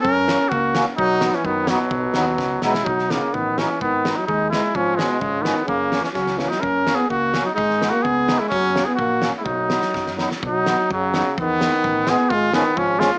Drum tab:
HH |--p---p-|--p---p-|--p---p-|--------|
SD |--o---o-|--oo--o-|--o-o-oo|-oo---o-|
BD |o---o---|o---o---|o---o---|o---o---|

HH |--------|--------|--------|--------|
SD |--o---o-|--o---o-|--oooooo|--o---o-|
BD |o---o---|o---o---|o---o---|o---o---|

HH |--------|--------|--------|--p---p-|
SD |-oo---o-|--o---o-|--oooooo|--o---o-|
BD |o---o---|o---o---|o---o---|o---o---|

HH |--p---p-|--p---p-|
SD |--o---o-|--o---o-|
BD |o---o---|o---o---|